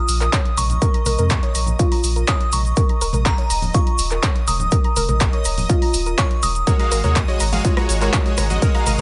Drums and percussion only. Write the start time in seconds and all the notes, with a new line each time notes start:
0.08 open hi-hat, shaker
0.21 clap, closed hi-hat, shaker
0.33 kick, clap, closed hi-hat, shaker
0.45 closed hi-hat
0.57 open hi-hat, high conga, shaker
0.70 closed hi-hat, low conga, shaker
0.82 kick, closed hi-hat, shaker
0.94 closed hi-hat
1.06 open hi-hat, high conga, shaker
1.18 closed hi-hat, high conga, shaker
1.30 kick, clap, closed hi-hat, shaker
1.43 closed hi-hat
1.55 open hi-hat, shaker
1.66 closed hi-hat, low conga, shaker
1.79 kick, closed hi-hat, shaker
1.92 open hi-hat
2.04 open hi-hat, shaker
2.16 closed hi-hat, shaker
2.28 kick, clap, closed hi-hat, shaker
2.41 closed hi-hat
2.52 open hi-hat, high conga, shaker
2.65 closed hi-hat, shaker
2.76 kick, closed hi-hat, shaker
2.89 closed hi-hat
3.01 open hi-hat, shaker
3.13 closed hi-hat, high conga, shaker
3.26 kick, clap, closed hi-hat, shaker
3.38 closed hi-hat
3.50 open hi-hat, shaker
3.62 open hi-hat, low conga, shaker
3.74 kick, closed hi-hat, shaker
3.87 closed hi-hat
3.98 open hi-hat, shaker
4.11 clap, closed hi-hat, shaker
4.23 kick, clap, closed hi-hat, shaker
4.36 closed hi-hat
4.48 open hi-hat, high conga, shaker
4.60 closed hi-hat, low conga, shaker
4.71 kick, closed hi-hat, shaker
4.84 closed hi-hat
4.96 open hi-hat, high conga, shaker
5.08 closed hi-hat, high conga, shaker
5.20 kick, clap, closed hi-hat, shaker
5.33 closed hi-hat
5.45 open hi-hat, shaker
5.58 open hi-hat, low conga, shaker
5.69 kick, closed hi-hat, shaker
5.82 open hi-hat
5.94 open hi-hat, shaker
6.06 closed hi-hat, shaker
6.18 kick, clap, closed hi-hat, shaker
6.31 closed hi-hat
6.43 open hi-hat, high conga, shaker
6.55 closed hi-hat, shaker
6.67 kick, closed hi-hat, shaker
6.79 closed hi-hat
6.92 open hi-hat, shaker
7.04 closed hi-hat, high conga, shaker
7.16 kick, clap, closed hi-hat, shaker
7.28 closed hi-hat
7.40 open hi-hat, shaker
7.52 open hi-hat, low conga, shaker
7.64 kick, closed hi-hat, shaker
7.77 cross-stick, closed hi-hat
7.89 open hi-hat, shaker
8.01 clap, closed hi-hat, shaker
8.13 kick, clap, closed hi-hat, shaker
8.26 closed hi-hat
8.37 cross-stick, open hi-hat, high conga, shaker
8.50 closed hi-hat, low conga, shaker
8.62 kick, closed hi-hat, shaker
8.75 closed hi-hat
8.86 open hi-hat, high conga, shaker
8.98 high conga, shaker